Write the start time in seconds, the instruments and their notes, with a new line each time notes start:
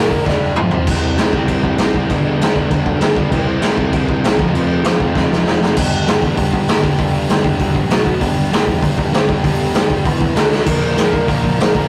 Already playing: picked electric bass F#1, distorted electric guitar A#2 F3 A#3
0.09 distorted electric guitar A#2 D3 F3 A#3 D4 A#4, kick
0.24 picked electric bass G1, distorted electric guitar G2 D3 G3 D4 G4 D5, kick, snare
0.41 picked electric bass F#1
0.55 picked electric bass F1, distorted electric guitar F2 C3 F3 C4 F4 C5, mid tom
0.59 distorted electric guitar F3
0.71 distorted electric guitar F2 C3 F3 C4 F4 C5, floor tom
0.86 picked electric bass C2, distorted electric guitar C3 G3 C4 E4, kick, crash
1.02 picked electric bass C2
1.17 picked electric bass C3, distorted electric guitar C3 G3 C4 E4, snare, crash
1.32 picked electric bass C2, distorted electric guitar C3 G3 C4 E4, kick
1.46 picked electric bass C2, distorted electric guitar C3 G3 C4 E4, kick, crash
1.63 picked electric bass G2, kick
1.77 picked electric bass C2, distorted electric guitar C3 G3 C4 E4, snare, crash
1.94 picked electric bass C2, distorted electric guitar C3 G3 C4 E4, kick
2.08 picked electric bass G1, distorted electric guitar G2 D3 G3 B3 D4, kick, crash
2.25 picked electric bass G1
2.38 distorted electric guitar G2 D3 G3 B3 D4, picked electric bass G2, crash
2.42 snare
2.55 picked electric bass G1, distorted electric guitar G2 D3 G3 B3 D4, kick
2.69 picked electric bass G1, distorted electric guitar G2 D3 G3 B3 D4, kick, crash
2.85 picked electric bass D2, kick
3.00 picked electric bass G1, distorted electric guitar G2 D3 G3 B3 D4, snare, crash
3.15 picked electric bass D2, distorted electric guitar G2 D3 G3 B3 D4, kick
3.30 picked electric bass C2, distorted electric guitar C3 G3 C4 E4, kick, crash
3.47 picked electric bass C2
3.60 distorted electric guitar C3 G3 C4 E4, picked electric bass C3, snare, crash
3.76 picked electric bass C2, distorted electric guitar C3 G3 C4 E4, kick
3.91 picked electric bass C2, distorted electric guitar C3 G3 C4 E4, kick, crash
4.08 picked electric bass G2, kick
4.22 picked electric bass C2, distorted electric guitar C3 G3 C4 E4, snare, crash
4.38 picked electric bass F1, distorted electric guitar F2 C3 F3 A3 C4 F4, kick
4.53 picked electric bass F1, distorted electric guitar F2 C3 F3 A3 C4 F4, crash
4.69 picked electric bass F1
4.83 picked electric bass F2, distorted electric guitar F2 C3 F3 A3 C4 F4, snare, crash
4.99 picked electric bass F1, distorted electric guitar F2 C3 F3 A3 C4 F4, kick
5.15 picked electric bass F1, distorted electric guitar F2 C3 F3 A3 C4 F4, kick, snare
5.29 picked electric bass C2, distorted electric guitar F2 C3 F3, snare
5.45 picked electric bass F1, distorted electric guitar F2 C3 F3 A3 C4 F4, snare
5.60 picked electric bass F1, distorted electric guitar F2 C3 F3 A3 C4 F4, snare
5.74 picked electric bass G1, distorted electric guitar G2 D3 G3 B3 D4 G4, kick, crash
5.91 picked electric bass G1
6.06 picked electric bass G1, distorted electric guitar G2 D3 G3 B3 D4 G4, snare, open hi-hat
6.21 picked electric bass E2, distorted electric guitar G2 D3 G3 B3 D4 G4, kick
6.35 picked electric bass G1, distorted electric guitar G2 D3 G3 B3 D4 G4, kick, open hi-hat
6.53 kick
6.67 picked electric bass G1, distorted electric guitar G2 D3 G3 B3 D4 G4, snare, open hi-hat
6.82 distorted electric guitar G2 D3 G3 B3 D4 G4, kick
6.97 picked electric bass G1, distorted electric guitar G2 D3 G3 B3 D4 G4, kick, open hi-hat
7.12 picked electric bass G1
7.28 picked electric bass G1, distorted electric guitar G2 D3 G3 B3 D4 G4, snare, open hi-hat
7.44 distorted electric guitar G2 D3 G3 B3 D4 G4, kick
7.58 picked electric bass D2, distorted electric guitar G2 D3 G3 B3 D4 G4, kick, open hi-hat
7.74 picked electric bass A#1, kick
7.89 picked electric bass B1, distorted electric guitar B2 F#3 B3 F#4, snare, open hi-hat
8.05 distorted electric guitar B2 F#3 B3 F#4, kick
8.20 picked electric bass G1, distorted electric guitar G2 D3 G3 B3 D4 G4, kick, open hi-hat
8.35 picked electric bass G1
8.50 picked electric bass G1, distorted electric guitar G2 D3 G3 B3 D4 G4, snare, open hi-hat
8.66 picked electric bass E2, distorted electric guitar G2 D3 G3 B3 D4 G4, kick
8.81 picked electric bass G1, distorted electric guitar G2 D3 G3 B3 D4 G4, kick, open hi-hat
8.98 kick
9.11 picked electric bass G1, distorted electric guitar G2 D3 G3 B3 D4 G4, snare, open hi-hat
9.28 distorted electric guitar G2 D3 G3 B3 D4 G4, kick
9.43 picked electric bass G1, distorted electric guitar G2 D3 G3 B3 D4 G4, kick, open hi-hat
9.59 picked electric bass G1
9.73 picked electric bass G1, distorted electric guitar G2 D3 G3 B3 D4 G4, snare, open hi-hat
9.90 distorted electric guitar G2 D3 G3 B3 D4 G4, kick
10.04 picked electric bass E1, distorted electric guitar E2 B2 E3 B3 E4 B4, kick, open hi-hat
10.20 picked electric bass C2, kick
10.35 picked electric bass D2, distorted electric guitar D3 A3 D4 A4, snare, open hi-hat
10.50 distorted electric guitar D3 A3 D4 A4, snare
10.65 picked electric bass A#1, distorted electric guitar A#2 D3 F3 A#3 D4 A#4, kick, open hi-hat, crash
10.81 picked electric bass A#1
10.95 picked electric bass A#1, distorted electric guitar A#2 D3 F3 A#3 D4 A#4, snare, open hi-hat
11.11 picked electric bass G2, distorted electric guitar A#2 D3 F3 A#3 D4 A#4, kick
11.26 picked electric bass A#1, distorted electric guitar A#2 D3 F3 A#3 D4 A#4, kick, open hi-hat
11.44 kick
11.57 picked electric bass A#1, distorted electric guitar A#2 D3 F3 A#3 D4 A#4, open hi-hat
11.61 snare
11.74 distorted electric guitar A#2 D3 F3 A#3 D4 A#4, kick